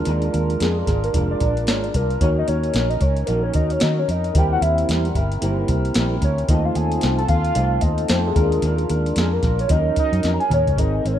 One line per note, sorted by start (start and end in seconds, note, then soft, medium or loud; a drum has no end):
0.00 0.67 G#3 medium
0.00 0.67 D4 medium
0.00 0.68 F4 medium
0.00 0.68 A#4 loud
0.05 0.28 D#2 loud
0.05 0.34 D#3 medium
0.05 0.34 G#3 medium
0.05 0.34 D4 medium
0.05 0.34 F4 medium
0.05 0.31 A#4 medium
0.05 closed hi-hat medium
0.22 closed hi-hat soft
0.33 0.56 D#2 loud
0.33 0.61 F4 medium
0.33 0.60 A#4 medium
0.33 closed hi-hat medium
0.37 0.61 D4 soft
0.50 closed hi-hat soft
0.60 0.82 F2 medium
0.60 0.87 G#3 medium
0.60 0.88 D4 medium
0.60 0.87 F4 medium
0.60 0.80 G#4 medium
0.60 0.85 A#4 medium
0.60 snare loud
0.60 closed hi-hat medium
0.78 0.89 A#4 medium
0.86 1.09 G#1 loud
0.86 1.14 D4 soft
0.86 1.14 F4 medium
0.86 1.04 G#4 medium
0.86 1.14 A#4 medium
0.86 kick medium
0.86 snare soft
0.86 closed hi-hat medium
1.04 1.29 A#4 medium
1.04 closed hi-hat soft
1.13 1.36 F1 medium
1.13 1.40 D#3 medium
1.13 1.88 G#3 medium
1.13 1.41 G#3 medium
1.13 1.88 D4 medium
1.13 1.41 D4 medium
1.13 1.88 F4 medium
1.13 1.42 F4 medium
1.13 1.89 A#4 medium
1.13 1.39 A#4 medium
1.13 kick medium
1.13 closed hi-hat medium
1.31 1.41 D5 medium
1.40 1.67 A#1 medium
1.40 1.67 D4 soft
1.40 1.68 F4 medium
1.40 1.68 A#4 medium
1.40 1.69 D5 loud
1.40 kick medium
1.40 closed hi-hat medium
1.57 closed hi-hat soft
1.67 1.89 G#1 medium
1.67 1.94 G#3 medium
1.67 1.95 D4 medium
1.67 1.95 F4 medium
1.67 1.93 A#4 medium
1.67 1.86 C#5 medium
1.67 snare loud
1.67 closed hi-hat medium
1.84 1.97 D5 medium
1.84 closed hi-hat soft
1.94 2.16 C2 medium
1.94 2.23 D4 soft
1.94 2.22 F4 soft
1.94 2.21 A#4 medium
1.94 kick medium
1.94 closed hi-hat medium
2.10 closed hi-hat soft
2.20 2.43 D#2 loud
2.20 2.48 D#3 medium
2.20 2.49 F#3 medium
2.20 2.95 A#3 medium
2.20 2.49 C#4 medium
2.20 2.95 D#4 medium
2.20 2.48 D#4 medium
2.20 2.96 F#4 medium
2.20 2.46 A#4 medium
2.20 2.29 C#5 loud
2.20 2.96 C#5 medium
2.20 kick loud
2.20 closed hi-hat medium
2.38 2.48 D#5 loud
2.47 2.70 D#2 medium
2.47 2.75 C#4 soft
2.47 2.75 D#4 soft
2.47 2.74 A#4 medium
2.47 2.73 C#5 medium
2.47 closed hi-hat medium
2.63 closed hi-hat soft
2.74 2.96 A#1 loud
2.74 3.02 F#3 medium
2.74 3.02 C#4 medium
2.74 3.02 D#4 medium
2.74 2.91 C#5 medium
2.74 snare loud
2.74 closed hi-hat medium
2.79 3.00 A#4 medium
2.90 3.03 D#5 medium
2.90 closed hi-hat soft
3.01 3.22 C#2 loud
3.01 3.28 C#4 soft
3.01 3.28 D#4 medium
3.01 3.28 A#4 medium
3.01 3.28 C#5 medium
3.01 kick medium
3.01 closed hi-hat medium
3.17 closed hi-hat soft
3.26 3.50 A#1 medium
3.26 3.55 D#3 medium
3.26 3.55 F#3 medium
3.26 4.02 A#3 medium
3.26 3.56 C#4 medium
3.26 4.02 D#4 medium
3.26 3.54 D#4 medium
3.26 4.02 F#4 medium
3.26 3.42 A#4 medium
3.26 3.52 A#4 medium
3.26 4.03 C#5 medium
3.26 closed hi-hat medium
3.43 3.57 C#5 medium
3.54 3.76 D#2 medium
3.54 3.81 C#4 soft
3.54 3.82 D#4 soft
3.54 3.81 A#4 medium
3.54 3.73 D#5 loud
3.54 kick medium
3.54 closed hi-hat medium
3.70 3.83 C#5 medium
3.70 closed hi-hat medium
3.80 4.04 D#3 medium
3.80 4.08 F#3 medium
3.80 4.09 C#4 medium
3.80 4.09 D#4 medium
3.80 4.00 D#5 loud
3.80 snare loud
3.80 closed hi-hat medium
3.84 4.07 A#4 medium
3.99 4.09 C#5 medium
4.08 4.30 F2 medium
4.08 4.37 C#4 soft
4.08 4.36 D#4 medium
4.08 4.35 A#4 medium
4.08 4.39 D#5 loud
4.08 closed hi-hat medium
4.24 closed hi-hat soft
4.33 4.57 D#2 loud
4.33 4.62 D#3 medium
4.33 4.63 G3 medium
4.33 5.08 A#3 medium
4.33 4.63 C4 medium
4.33 5.09 E4 medium
4.33 5.09 G4 medium
4.33 5.10 C5 medium
4.33 kick loud
4.33 closed hi-hat medium
4.38 4.63 E4 medium
4.38 4.61 A#4 medium
4.38 4.52 G5 loud
4.52 4.63 F#5 loud
4.61 4.83 D#2 loud
4.61 4.90 E4 medium
4.61 4.89 A#4 medium
4.61 4.89 E5 loud
4.61 closed hi-hat medium
4.66 4.89 C4 soft
4.78 closed hi-hat soft
4.89 5.10 E2 loud
4.89 5.16 G3 medium
4.89 5.17 C4 medium
4.89 5.17 E4 medium
4.89 snare medium
4.89 closed hi-hat medium
4.93 5.15 A#4 medium
5.05 closed hi-hat soft
5.15 5.37 G1 medium
5.15 5.43 E4 medium
5.15 5.43 A#4 medium
5.15 kick medium
5.15 closed hi-hat medium
5.20 5.42 C4 medium
5.32 closed hi-hat medium
5.41 5.64 G1 medium
5.41 5.69 D#3 medium
5.41 5.69 G3 medium
5.41 6.16 A#3 medium
5.41 5.70 C4 medium
5.41 6.16 E4 medium
5.41 5.70 E4 loud
5.41 6.16 G4 medium
5.41 5.68 A#4 medium
5.41 6.17 C5 medium
5.41 closed hi-hat medium
5.68 5.90 C2 medium
5.68 5.97 C4 medium
5.68 5.97 E4 medium
5.68 5.96 A#4 medium
5.68 kick medium
5.68 closed hi-hat medium
5.85 closed hi-hat medium
5.94 6.17 A#1 medium
5.94 6.23 G3 medium
5.94 6.24 C4 medium
5.94 snare loud
5.94 closed hi-hat medium
5.99 6.23 E4 medium
5.99 6.21 A#4 medium
6.22 6.43 D2 medium
6.22 6.50 E4 medium
6.22 6.49 A#4 medium
6.22 6.48 C#5 loud
6.22 kick medium
6.22 closed hi-hat medium
6.26 6.49 C4 soft
6.38 closed hi-hat soft
6.48 6.70 D#2 loud
6.48 6.76 D#3 medium
6.48 7.22 A3 medium
6.48 6.77 A3 medium
6.48 6.77 C4 medium
6.48 7.23 D#4 medium
6.48 7.23 F4 medium
6.48 6.77 F4 medium
6.48 7.24 C5 medium
6.48 6.67 D#5 loud
6.48 kick loud
6.48 closed hi-hat medium
6.52 6.74 A4 medium
6.65 6.77 F5 loud
6.75 6.97 D#2 medium
6.75 7.03 F4 medium
6.75 7.03 A4 medium
6.75 7.18 G#5 loud
6.75 closed hi-hat medium
6.80 7.02 C4 soft
6.92 closed hi-hat soft
7.01 7.25 C2 loud
7.01 7.29 A3 medium
7.01 7.30 C4 medium
7.01 7.29 F4 medium
7.01 snare medium
7.01 closed hi-hat medium
7.06 7.27 A4 medium
7.18 7.28 A5 loud
7.18 closed hi-hat soft
7.28 7.51 D#2 loud
7.28 7.55 C4 soft
7.28 7.55 F4 medium
7.28 7.56 A4 medium
7.28 7.83 F5 loud
7.28 kick medium
7.28 closed hi-hat medium
7.45 closed hi-hat medium
7.55 7.78 C2 loud
7.55 7.82 D#3 medium
7.55 8.30 A3 medium
7.55 7.83 A3 medium
7.55 7.83 C4 medium
7.55 8.30 D#4 medium
7.55 7.83 F4 medium
7.55 8.30 F4 medium
7.55 7.81 A4 medium
7.55 8.31 C5 medium
7.55 closed hi-hat medium
7.81 8.04 D#2 medium
7.81 8.11 F4 soft
7.81 8.09 A4 medium
7.81 8.11 D#5 loud
7.81 kick loud
7.81 closed hi-hat medium
7.86 8.09 C4 soft
7.98 closed hi-hat medium
8.08 8.31 F2 medium
8.08 8.36 A3 medium
8.08 8.37 C4 medium
8.08 8.37 F4 medium
8.08 8.29 C5 loud
8.08 snare loud
8.08 closed hi-hat medium
8.13 8.35 A4 medium
8.27 8.80 G#4 medium
8.35 8.58 D#2 medium
8.35 9.23 G#3 medium
8.35 9.23 D4 medium
8.35 9.23 F4 medium
8.35 8.64 F4 medium
8.35 8.63 A#4 medium
8.35 9.24 A#4 medium
8.35 kick loud
8.35 closed hi-hat medium
8.39 8.63 D4 soft
8.52 closed hi-hat soft
8.62 8.84 D#2 loud
8.62 8.90 D#3 medium
8.62 8.90 G#3 medium
8.62 8.91 D4 medium
8.62 8.90 F4 medium
8.62 8.88 A#4 loud
8.62 closed hi-hat medium
8.78 closed hi-hat soft
8.89 9.12 D#2 medium
8.89 9.18 D4 medium
8.89 9.17 F4 medium
8.89 9.17 A#4 medium
8.89 closed hi-hat medium
9.06 closed hi-hat soft
9.16 9.38 F2 medium
9.16 9.44 G#3 medium
9.16 9.45 D4 medium
9.16 9.45 F4 medium
9.16 9.35 G#4 medium
9.16 snare medium
9.16 closed hi-hat loud
9.20 9.43 A#4 medium
9.33 9.60 A#4 medium
9.43 9.65 A#1 loud
9.43 9.72 F4 medium
9.43 9.71 A#4 medium
9.43 kick medium
9.43 snare soft
9.43 closed hi-hat medium
9.47 9.71 D4 soft
9.59 9.70 C#5 medium
9.59 closed hi-hat soft
9.68 9.92 D#2 loud
9.68 9.97 D#3 medium
9.68 10.43 F#3 medium
9.68 9.98 F#3 medium
9.68 10.44 C#4 medium
9.68 9.98 C#4 medium
9.68 10.44 D#4 medium
9.68 10.45 A#4 medium
9.68 9.95 D#5 medium
9.68 kick loud
9.68 closed hi-hat medium
9.73 9.98 D#4 medium
9.73 9.97 A#4 medium
9.96 10.25 A#4 medium
9.96 10.30 D#5 loud
9.96 muted fingered electric bass stroke soft
9.96 kick medium
9.96 closed hi-hat medium
10.00 10.25 C#4 soft
10.00 10.26 D#4 medium
10.13 10.21 F#2 loud
10.13 closed hi-hat medium
10.23 10.37 F2 medium
10.23 10.51 F#3 medium
10.23 10.52 C#4 medium
10.23 snare medium
10.23 closed hi-hat medium
10.27 10.52 D#4 medium
10.27 10.49 A#4 medium
10.34 10.41 A#5 medium
10.40 10.51 G#5 loud
10.40 closed hi-hat soft
10.50 10.63 D#2 loud
10.50 10.78 D#4 medium
10.50 10.77 A#4 medium
10.50 10.80 C#5 loud
10.50 closed hi-hat medium
10.50 mid tom medium
10.54 10.79 C#4 medium
10.67 10.75 C#2 loud
10.67 closed hi-hat soft
10.67 floor tom medium
10.76 10.99 G#1 loud
10.76 11.19 G#3 medium
10.76 11.04 G#3 medium
10.76 11.19 C4 medium
10.76 11.05 C4 medium
10.76 11.19 D#4 medium
10.76 11.04 D#4 medium
10.76 11.19 A#4 medium
10.76 11.02 A#4 medium
10.76 11.08 D#5 loud
10.76 kick loud
10.76 closed hi-hat medium
11.03 11.19 G#1 medium
11.03 11.19 C4 soft
11.03 11.19 D#4 soft
11.03 11.19 A#4 medium
11.03 11.15 C5 medium
11.03 closed hi-hat medium
11.14 11.19 C#5 medium